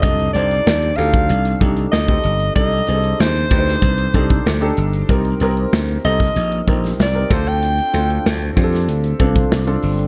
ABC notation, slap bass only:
X:1
M:4/4
L:1/8
Q:1/4=95
K:Cdor
V:1 name="Slap bass" clef=bass
C,, C,, E,, D,, C,, C,, D,, G,,, | C,, C,, E,, D,, C,, C,, D,, G,,, | C,, C,, D,, C,, B,,, B,,, C,, D,,- | D,, D,, D,, F,, D,, C,, C,, G,,, |]